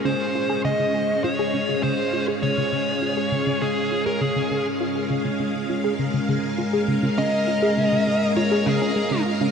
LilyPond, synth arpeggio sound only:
\new Staff \with { instrumentName = "Synth arpeggio sound" } { \clef bass \time 4/4 \key des \major \tempo 4 = 101 des16 r16 f'16 aes'16 des16 des16 des16 r16 f'16 aes'16 des16 des16 des16 r16 f'16 aes'16 | des16 des16 des16 r16 f'16 aes'16 des16 des16 des16 r16 f'16 aes'16 des16 des16 des16 r16 | f'16 aes'16 des16 des16 des16 r16 f'16 aes'16 des16 des16 des16 r16 f'16 aes'16 des16 des16 | des16 r16 f'16 aes'16 des16 des16 des16 r16 f'16 aes'16 des16 des'16 aes16 des16 f'16 des16 | }